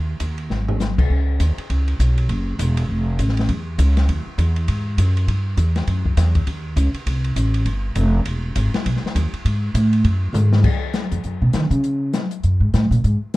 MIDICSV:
0, 0, Header, 1, 4, 480
1, 0, Start_track
1, 0, Key_signature, 4, "minor"
1, 0, Tempo, 298359
1, 1771, Time_signature, 4, 2, 24, 8
1, 21503, End_track
2, 0, Start_track
2, 0, Title_t, "Upright bass"
2, 0, Program_c, 0, 32
2, 0, Note_on_c, 0, 39, 71
2, 292, Note_off_c, 0, 39, 0
2, 325, Note_on_c, 0, 39, 68
2, 774, Note_off_c, 0, 39, 0
2, 800, Note_on_c, 0, 32, 70
2, 1522, Note_off_c, 0, 32, 0
2, 1576, Note_on_c, 0, 36, 60
2, 1756, Note_off_c, 0, 36, 0
2, 1768, Note_on_c, 0, 37, 71
2, 2236, Note_off_c, 0, 37, 0
2, 2248, Note_on_c, 0, 39, 86
2, 2520, Note_off_c, 0, 39, 0
2, 2733, Note_on_c, 0, 37, 75
2, 3199, Note_off_c, 0, 37, 0
2, 3206, Note_on_c, 0, 35, 87
2, 3676, Note_off_c, 0, 35, 0
2, 3682, Note_on_c, 0, 30, 83
2, 4154, Note_off_c, 0, 30, 0
2, 4163, Note_on_c, 0, 28, 92
2, 4634, Note_off_c, 0, 28, 0
2, 4643, Note_on_c, 0, 29, 78
2, 5114, Note_off_c, 0, 29, 0
2, 5127, Note_on_c, 0, 33, 89
2, 5596, Note_off_c, 0, 33, 0
2, 5612, Note_on_c, 0, 40, 79
2, 6079, Note_off_c, 0, 40, 0
2, 6087, Note_on_c, 0, 37, 95
2, 6556, Note_off_c, 0, 37, 0
2, 6571, Note_on_c, 0, 39, 81
2, 6842, Note_off_c, 0, 39, 0
2, 7045, Note_on_c, 0, 40, 97
2, 7515, Note_off_c, 0, 40, 0
2, 7533, Note_on_c, 0, 44, 77
2, 7995, Note_off_c, 0, 44, 0
2, 8004, Note_on_c, 0, 42, 82
2, 8474, Note_off_c, 0, 42, 0
2, 8488, Note_on_c, 0, 43, 75
2, 8952, Note_off_c, 0, 43, 0
2, 8962, Note_on_c, 0, 40, 88
2, 9433, Note_off_c, 0, 40, 0
2, 9447, Note_on_c, 0, 42, 75
2, 9916, Note_off_c, 0, 42, 0
2, 9925, Note_on_c, 0, 40, 86
2, 10394, Note_off_c, 0, 40, 0
2, 10408, Note_on_c, 0, 39, 75
2, 10868, Note_off_c, 0, 39, 0
2, 10878, Note_on_c, 0, 37, 97
2, 11154, Note_off_c, 0, 37, 0
2, 11364, Note_on_c, 0, 36, 73
2, 11829, Note_off_c, 0, 36, 0
2, 11838, Note_on_c, 0, 33, 81
2, 12306, Note_off_c, 0, 33, 0
2, 12316, Note_on_c, 0, 31, 77
2, 12789, Note_off_c, 0, 31, 0
2, 12800, Note_on_c, 0, 29, 97
2, 13267, Note_off_c, 0, 29, 0
2, 13277, Note_on_c, 0, 28, 82
2, 13749, Note_off_c, 0, 28, 0
2, 13769, Note_on_c, 0, 32, 89
2, 14039, Note_off_c, 0, 32, 0
2, 14246, Note_on_c, 0, 35, 73
2, 14517, Note_off_c, 0, 35, 0
2, 14721, Note_on_c, 0, 39, 96
2, 14995, Note_off_c, 0, 39, 0
2, 15202, Note_on_c, 0, 44, 76
2, 15667, Note_off_c, 0, 44, 0
2, 15676, Note_on_c, 0, 45, 92
2, 16148, Note_off_c, 0, 45, 0
2, 16157, Note_on_c, 0, 42, 71
2, 16607, Note_off_c, 0, 42, 0
2, 16617, Note_on_c, 0, 44, 93
2, 17098, Note_off_c, 0, 44, 0
2, 17884, Note_on_c, 0, 41, 69
2, 18075, Note_off_c, 0, 41, 0
2, 18096, Note_on_c, 0, 42, 60
2, 18358, Note_off_c, 0, 42, 0
2, 18367, Note_on_c, 0, 47, 73
2, 18558, Note_off_c, 0, 47, 0
2, 18567, Note_on_c, 0, 51, 93
2, 18822, Note_off_c, 0, 51, 0
2, 18832, Note_on_c, 0, 49, 85
2, 19468, Note_off_c, 0, 49, 0
2, 20008, Note_on_c, 0, 42, 65
2, 20268, Note_off_c, 0, 42, 0
2, 20277, Note_on_c, 0, 44, 71
2, 20473, Note_off_c, 0, 44, 0
2, 20491, Note_on_c, 0, 45, 80
2, 20758, Note_off_c, 0, 45, 0
2, 20767, Note_on_c, 0, 46, 89
2, 20958, Note_off_c, 0, 46, 0
2, 20982, Note_on_c, 0, 44, 76
2, 21153, Note_off_c, 0, 44, 0
2, 21503, End_track
3, 0, Start_track
3, 0, Title_t, "Muted upright bass strokes"
3, 2535, Note_on_c, 9, 29, 35
3, 2696, Note_off_c, 9, 29, 0
3, 6868, Note_on_c, 9, 29, 36
3, 7029, Note_off_c, 9, 29, 0
3, 11162, Note_on_c, 9, 29, 36
3, 11323, Note_off_c, 9, 29, 0
3, 14535, Note_on_c, 9, 29, 35
3, 14695, Note_off_c, 9, 29, 0
3, 15009, Note_on_c, 9, 29, 40
3, 15170, Note_off_c, 9, 29, 0
3, 21503, End_track
4, 0, Start_track
4, 0, Title_t, "Drums"
4, 321, Note_on_c, 9, 44, 50
4, 321, Note_on_c, 9, 51, 62
4, 482, Note_off_c, 9, 44, 0
4, 482, Note_off_c, 9, 51, 0
4, 606, Note_on_c, 9, 51, 39
4, 767, Note_off_c, 9, 51, 0
4, 810, Note_on_c, 9, 38, 37
4, 971, Note_off_c, 9, 38, 0
4, 1103, Note_on_c, 9, 43, 50
4, 1263, Note_off_c, 9, 43, 0
4, 1287, Note_on_c, 9, 44, 52
4, 1292, Note_on_c, 9, 38, 49
4, 1448, Note_off_c, 9, 44, 0
4, 1453, Note_off_c, 9, 38, 0
4, 1584, Note_on_c, 9, 36, 64
4, 1586, Note_on_c, 9, 49, 57
4, 1744, Note_off_c, 9, 36, 0
4, 1747, Note_off_c, 9, 49, 0
4, 1774, Note_on_c, 9, 36, 19
4, 1934, Note_off_c, 9, 36, 0
4, 2249, Note_on_c, 9, 44, 56
4, 2249, Note_on_c, 9, 51, 61
4, 2253, Note_on_c, 9, 36, 25
4, 2410, Note_off_c, 9, 44, 0
4, 2410, Note_off_c, 9, 51, 0
4, 2414, Note_off_c, 9, 36, 0
4, 2545, Note_on_c, 9, 51, 44
4, 2706, Note_off_c, 9, 51, 0
4, 2732, Note_on_c, 9, 51, 58
4, 2733, Note_on_c, 9, 36, 18
4, 2893, Note_off_c, 9, 51, 0
4, 2894, Note_off_c, 9, 36, 0
4, 3019, Note_on_c, 9, 51, 43
4, 3180, Note_off_c, 9, 51, 0
4, 3214, Note_on_c, 9, 44, 55
4, 3214, Note_on_c, 9, 51, 58
4, 3216, Note_on_c, 9, 36, 17
4, 3375, Note_off_c, 9, 44, 0
4, 3375, Note_off_c, 9, 51, 0
4, 3377, Note_off_c, 9, 36, 0
4, 3501, Note_on_c, 9, 51, 45
4, 3662, Note_off_c, 9, 51, 0
4, 3686, Note_on_c, 9, 51, 56
4, 3691, Note_on_c, 9, 36, 22
4, 3847, Note_off_c, 9, 51, 0
4, 3852, Note_off_c, 9, 36, 0
4, 4170, Note_on_c, 9, 44, 54
4, 4170, Note_on_c, 9, 51, 67
4, 4171, Note_on_c, 9, 36, 21
4, 4330, Note_off_c, 9, 44, 0
4, 4330, Note_off_c, 9, 51, 0
4, 4332, Note_off_c, 9, 36, 0
4, 4458, Note_on_c, 9, 51, 64
4, 4619, Note_off_c, 9, 51, 0
4, 4652, Note_on_c, 9, 36, 21
4, 4812, Note_off_c, 9, 36, 0
4, 5129, Note_on_c, 9, 44, 43
4, 5129, Note_on_c, 9, 51, 59
4, 5130, Note_on_c, 9, 36, 18
4, 5286, Note_on_c, 9, 38, 28
4, 5290, Note_off_c, 9, 44, 0
4, 5290, Note_off_c, 9, 51, 0
4, 5291, Note_off_c, 9, 36, 0
4, 5423, Note_on_c, 9, 51, 43
4, 5447, Note_off_c, 9, 38, 0
4, 5460, Note_on_c, 9, 38, 40
4, 5584, Note_off_c, 9, 51, 0
4, 5608, Note_on_c, 9, 51, 56
4, 5613, Note_on_c, 9, 36, 26
4, 5621, Note_off_c, 9, 38, 0
4, 5769, Note_off_c, 9, 51, 0
4, 5774, Note_off_c, 9, 36, 0
4, 6092, Note_on_c, 9, 44, 58
4, 6092, Note_on_c, 9, 51, 73
4, 6095, Note_on_c, 9, 36, 20
4, 6253, Note_off_c, 9, 44, 0
4, 6253, Note_off_c, 9, 51, 0
4, 6256, Note_off_c, 9, 36, 0
4, 6384, Note_on_c, 9, 51, 45
4, 6389, Note_on_c, 9, 38, 45
4, 6545, Note_off_c, 9, 51, 0
4, 6550, Note_off_c, 9, 38, 0
4, 6575, Note_on_c, 9, 51, 55
4, 6576, Note_on_c, 9, 36, 17
4, 6736, Note_off_c, 9, 51, 0
4, 6737, Note_off_c, 9, 36, 0
4, 7054, Note_on_c, 9, 44, 53
4, 7054, Note_on_c, 9, 51, 55
4, 7056, Note_on_c, 9, 36, 19
4, 7215, Note_off_c, 9, 44, 0
4, 7215, Note_off_c, 9, 51, 0
4, 7216, Note_off_c, 9, 36, 0
4, 7338, Note_on_c, 9, 51, 42
4, 7499, Note_off_c, 9, 51, 0
4, 7529, Note_on_c, 9, 51, 62
4, 7536, Note_on_c, 9, 36, 22
4, 7690, Note_off_c, 9, 51, 0
4, 7697, Note_off_c, 9, 36, 0
4, 8013, Note_on_c, 9, 44, 50
4, 8013, Note_on_c, 9, 51, 68
4, 8016, Note_on_c, 9, 36, 18
4, 8174, Note_off_c, 9, 44, 0
4, 8174, Note_off_c, 9, 51, 0
4, 8177, Note_off_c, 9, 36, 0
4, 8314, Note_on_c, 9, 51, 46
4, 8475, Note_off_c, 9, 51, 0
4, 8497, Note_on_c, 9, 36, 27
4, 8498, Note_on_c, 9, 51, 59
4, 8657, Note_off_c, 9, 36, 0
4, 8659, Note_off_c, 9, 51, 0
4, 8967, Note_on_c, 9, 44, 50
4, 8967, Note_on_c, 9, 51, 57
4, 8974, Note_on_c, 9, 36, 21
4, 9128, Note_off_c, 9, 44, 0
4, 9128, Note_off_c, 9, 51, 0
4, 9135, Note_off_c, 9, 36, 0
4, 9260, Note_on_c, 9, 51, 41
4, 9265, Note_on_c, 9, 38, 44
4, 9421, Note_off_c, 9, 51, 0
4, 9426, Note_off_c, 9, 38, 0
4, 9450, Note_on_c, 9, 51, 54
4, 9455, Note_on_c, 9, 36, 25
4, 9611, Note_off_c, 9, 51, 0
4, 9616, Note_off_c, 9, 36, 0
4, 9744, Note_on_c, 9, 36, 47
4, 9904, Note_off_c, 9, 36, 0
4, 9928, Note_on_c, 9, 44, 60
4, 9928, Note_on_c, 9, 51, 68
4, 9933, Note_on_c, 9, 36, 21
4, 9933, Note_on_c, 9, 38, 36
4, 10089, Note_off_c, 9, 44, 0
4, 10089, Note_off_c, 9, 51, 0
4, 10094, Note_off_c, 9, 36, 0
4, 10094, Note_off_c, 9, 38, 0
4, 10216, Note_on_c, 9, 51, 46
4, 10221, Note_on_c, 9, 36, 55
4, 10377, Note_off_c, 9, 51, 0
4, 10382, Note_off_c, 9, 36, 0
4, 10406, Note_on_c, 9, 51, 59
4, 10412, Note_on_c, 9, 36, 19
4, 10567, Note_off_c, 9, 51, 0
4, 10573, Note_off_c, 9, 36, 0
4, 10884, Note_on_c, 9, 44, 59
4, 10884, Note_on_c, 9, 51, 63
4, 10889, Note_on_c, 9, 36, 20
4, 11045, Note_off_c, 9, 44, 0
4, 11045, Note_off_c, 9, 51, 0
4, 11050, Note_off_c, 9, 36, 0
4, 11170, Note_on_c, 9, 51, 47
4, 11331, Note_off_c, 9, 51, 0
4, 11368, Note_on_c, 9, 36, 28
4, 11368, Note_on_c, 9, 51, 68
4, 11529, Note_off_c, 9, 36, 0
4, 11529, Note_off_c, 9, 51, 0
4, 11653, Note_on_c, 9, 51, 46
4, 11813, Note_off_c, 9, 51, 0
4, 11844, Note_on_c, 9, 44, 59
4, 11844, Note_on_c, 9, 51, 64
4, 11846, Note_on_c, 9, 36, 19
4, 12005, Note_off_c, 9, 44, 0
4, 12005, Note_off_c, 9, 51, 0
4, 12007, Note_off_c, 9, 36, 0
4, 12131, Note_on_c, 9, 51, 50
4, 12292, Note_off_c, 9, 51, 0
4, 12316, Note_on_c, 9, 51, 57
4, 12323, Note_on_c, 9, 36, 19
4, 12477, Note_off_c, 9, 51, 0
4, 12484, Note_off_c, 9, 36, 0
4, 12797, Note_on_c, 9, 44, 53
4, 12797, Note_on_c, 9, 51, 62
4, 12806, Note_on_c, 9, 36, 22
4, 12957, Note_off_c, 9, 44, 0
4, 12957, Note_off_c, 9, 51, 0
4, 12966, Note_off_c, 9, 36, 0
4, 13279, Note_on_c, 9, 51, 64
4, 13285, Note_on_c, 9, 36, 26
4, 13440, Note_off_c, 9, 51, 0
4, 13446, Note_off_c, 9, 36, 0
4, 13763, Note_on_c, 9, 44, 52
4, 13763, Note_on_c, 9, 51, 72
4, 13768, Note_on_c, 9, 36, 22
4, 13924, Note_off_c, 9, 44, 0
4, 13924, Note_off_c, 9, 51, 0
4, 13929, Note_off_c, 9, 36, 0
4, 14063, Note_on_c, 9, 51, 45
4, 14067, Note_on_c, 9, 38, 62
4, 14223, Note_off_c, 9, 51, 0
4, 14228, Note_off_c, 9, 38, 0
4, 14252, Note_on_c, 9, 36, 26
4, 14252, Note_on_c, 9, 51, 63
4, 14412, Note_off_c, 9, 51, 0
4, 14413, Note_off_c, 9, 36, 0
4, 14421, Note_on_c, 9, 38, 28
4, 14577, Note_off_c, 9, 38, 0
4, 14577, Note_on_c, 9, 38, 43
4, 14730, Note_on_c, 9, 36, 19
4, 14730, Note_on_c, 9, 44, 53
4, 14730, Note_on_c, 9, 51, 66
4, 14738, Note_off_c, 9, 38, 0
4, 14891, Note_off_c, 9, 36, 0
4, 14891, Note_off_c, 9, 44, 0
4, 14891, Note_off_c, 9, 51, 0
4, 15019, Note_on_c, 9, 51, 43
4, 15180, Note_off_c, 9, 51, 0
4, 15208, Note_on_c, 9, 36, 21
4, 15212, Note_on_c, 9, 51, 64
4, 15369, Note_off_c, 9, 36, 0
4, 15373, Note_off_c, 9, 51, 0
4, 15681, Note_on_c, 9, 44, 54
4, 15681, Note_on_c, 9, 51, 69
4, 15684, Note_on_c, 9, 36, 25
4, 15842, Note_off_c, 9, 44, 0
4, 15842, Note_off_c, 9, 51, 0
4, 15845, Note_off_c, 9, 36, 0
4, 15970, Note_on_c, 9, 51, 45
4, 16131, Note_off_c, 9, 51, 0
4, 16160, Note_on_c, 9, 51, 53
4, 16163, Note_on_c, 9, 36, 24
4, 16321, Note_off_c, 9, 51, 0
4, 16324, Note_off_c, 9, 36, 0
4, 16634, Note_on_c, 9, 44, 57
4, 16639, Note_on_c, 9, 47, 43
4, 16795, Note_off_c, 9, 44, 0
4, 16800, Note_off_c, 9, 47, 0
4, 16935, Note_on_c, 9, 38, 64
4, 17096, Note_off_c, 9, 38, 0
4, 17116, Note_on_c, 9, 49, 70
4, 17117, Note_on_c, 9, 36, 66
4, 17277, Note_off_c, 9, 49, 0
4, 17278, Note_off_c, 9, 36, 0
4, 17592, Note_on_c, 9, 42, 39
4, 17597, Note_on_c, 9, 38, 60
4, 17753, Note_off_c, 9, 42, 0
4, 17758, Note_off_c, 9, 38, 0
4, 17883, Note_on_c, 9, 42, 36
4, 18044, Note_off_c, 9, 42, 0
4, 18078, Note_on_c, 9, 42, 33
4, 18239, Note_off_c, 9, 42, 0
4, 18553, Note_on_c, 9, 42, 41
4, 18558, Note_on_c, 9, 38, 59
4, 18714, Note_off_c, 9, 42, 0
4, 18719, Note_off_c, 9, 38, 0
4, 18839, Note_on_c, 9, 42, 36
4, 19000, Note_off_c, 9, 42, 0
4, 19043, Note_on_c, 9, 42, 38
4, 19204, Note_off_c, 9, 42, 0
4, 19521, Note_on_c, 9, 42, 43
4, 19526, Note_on_c, 9, 38, 68
4, 19682, Note_off_c, 9, 42, 0
4, 19687, Note_off_c, 9, 38, 0
4, 19804, Note_on_c, 9, 42, 38
4, 19965, Note_off_c, 9, 42, 0
4, 20005, Note_on_c, 9, 42, 36
4, 20166, Note_off_c, 9, 42, 0
4, 20490, Note_on_c, 9, 42, 37
4, 20495, Note_on_c, 9, 38, 58
4, 20651, Note_off_c, 9, 42, 0
4, 20656, Note_off_c, 9, 38, 0
4, 20787, Note_on_c, 9, 42, 36
4, 20948, Note_off_c, 9, 42, 0
4, 20983, Note_on_c, 9, 42, 36
4, 21144, Note_off_c, 9, 42, 0
4, 21503, End_track
0, 0, End_of_file